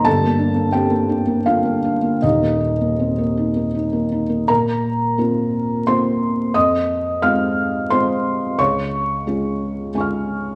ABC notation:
X:1
M:3/4
L:1/16
Q:1/4=88
K:Bbm
V:1 name="Felt piano"
[=A=a]4 [=G=g]4 [Ff]4 | [Ee]8 z4 | [Bb]8 [cc']4 | [ee']4 [ff']4 [cc']4 |
[dd']12 |]
V:2 name="Felt piano"
[=G,,,=G,,] B, =D B, C B, D B, D B, D B, | [E,,,E,,] B, E B, C B, E B, E B, E B, | B,,4 [B,CF]4 [B,CF]4 | F,,4 [A,CF]4 [A,CF]4 |
D,,4 [A,DF]4 [A,DFad'f']4 |]